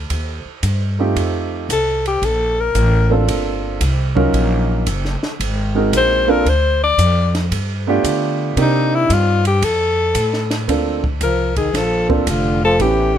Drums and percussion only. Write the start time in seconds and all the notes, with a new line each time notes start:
0.10 kick, ride
0.63 kick, hi-hat pedal, ride
1.16 kick, ride
1.69 kick, hi-hat pedal, ride
2.06 ride
2.22 kick, ride
2.75 kick, hi-hat pedal, ride
3.28 kick, ride
3.81 kick, hi-hat pedal, ride
4.17 kick
4.34 kick, ride
4.87 kick, hi-hat pedal, ride
5.05 snare
5.23 snare
5.40 kick, ride
5.93 kick, hi-hat pedal, ride
6.46 kick, ride
6.99 kick, hi-hat pedal, ride
7.35 snare, ride
7.52 kick, ride
8.04 kick, hi-hat pedal, ride
8.57 kick, ride
9.10 kick, hi-hat pedal, ride
9.45 ride
9.62 kick, ride
10.15 kick, hi-hat pedal, ride
10.33 snare
10.51 snare, ride
10.68 kick, ride
11.04 kick
11.21 kick, hi-hat pedal, ride
11.56 kick, ride
11.74 kick, snare, ride
12.10 kick
12.27 kick, hi-hat pedal, ride
12.80 kick, ride